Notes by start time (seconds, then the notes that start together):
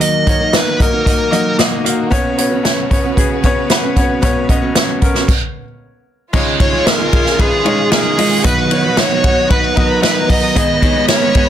Already playing: D#2 D#3 F#3 A#3 D#4 F#4 A#4 D#5
0.01 D#5, closed hi-hat
0.26 A#3 D#4 F#4 C#5, kick, closed hi-hat
0.39 D#4 F#4 A#4
0.52 A#3 D#4 F#4 D#5, snare, closed hi-hat
0.56 B4
0.79 A#3 D#4 F#4 A#4 D#5, kick, closed hi-hat
0.92 D#4 F#4 A#4
1.05 A#3 D#4 F#4 D#5, kick, closed hi-hat
1.31 F#3 A#3 D#4 F#4 A#4 D#5, closed hi-hat
1.58 A#3 D#4 F#4 D#5, snare, closed hi-hat
1.71 D#4 F#4 A#4
1.84 A#3 D#4 F#4 F5, closed hi-hat
2.10 B1 B2 C#3 B3 C#4 F#4 B4 C#5, kick, closed hi-hat
2.37 B3 C#4 F#4 C#5, closed hi-hat
2.51 C#4 F#4 B4
2.63 B3 C#4 F#4 C#5, snare, closed hi-hat
2.90 B3 C#4 F#4 C#5, kick, closed hi-hat
3.04 C#4 F#4 B4
3.17 B3 C#4 F#4 G#4, kick, closed hi-hat
3.43 B3 C#4 F#4 B4 C#5, kick, closed hi-hat
3.70 B3 C#4 F#4 B4, snare, closed hi-hat
3.82 C#4 F#4 B4
3.96 B3 C#4 F#4 C#5, kick, closed hi-hat
4.21 B1 B2 B3 C#4 F#4 B4 C#5, kick, closed hi-hat
4.49 B3 C#4 F#4 D#5, kick, closed hi-hat
4.62 C#4 F#4 B4
4.75 B3 C#4 F#4 C#5, snare, closed hi-hat
5.01 B3 C#4 F#4 A#4, kick, closed hi-hat
5.14 C#4 F#4 B4, snare
5.28 kick, crash
6.32 C#2 C#3 D#3 G#3 C#4 D#4 F4 G#4 C#5 F5, kick, crash
6.60 G#3 D#4 F4 C#5, kick, ride
6.72 D#4 F4 G#4
6.86 G#3 D#4 F4 A#4 D#5, snare, ride
6.99 D#4 F4 G#4
7.12 G#3 D#4 F4 G#4, kick, ride
7.26 snare
7.38 G#3 D#4 F4 G#4 B4, kick, ride
7.64 G#3 D#4 F4 G#4 C#5, ride
7.91 G#3 D#4 F4 G#4 A#4 G#5, snare, ride
8.17 G#3 D#4 F4 G#4 D#5, open hi-hat, ride
8.43 B1 B2 D#3 F#3 B3 D#4 F#4 B4 D#5 F#5, kick, hi-hat pedal, ride
8.70 B3 D#4 F#4 C#5, ride
8.83 F#3 B3 D#4 B4
8.97 B3 D#4 F#4 C#5 D#5, snare, ride
9.10 F#3 B3 D#4 B4
9.23 B3 D#4 F#4 F#5, kick, ride
9.49 B3 D#4 F#4 B4, kick, ride
9.76 F#3 B3 D#4 F#4 A#4 B4 D#5 A#5, kick, ride
10.02 F#3 B3 D#4 F#4 B4 D#5, snare, ride
10.28 F#3 B3 D#4 F#4 B4 D#5, kick, open hi-hat, ride
10.55 G#1 G#2 D#3 G#3 B3 D#4 G#4 B4 D#5 B5, kick, hi-hat pedal, ride
10.82 B3 D#4 G#4 C#5, kick, ride
10.94 G#3 B3 D#4 B4
11.08 B3 D#4 G#4 A#4 C#5, snare, ride
11.21 G#3 B3 D#4 B4
11.35 B3 D#4 G#4 D#5, kick, ride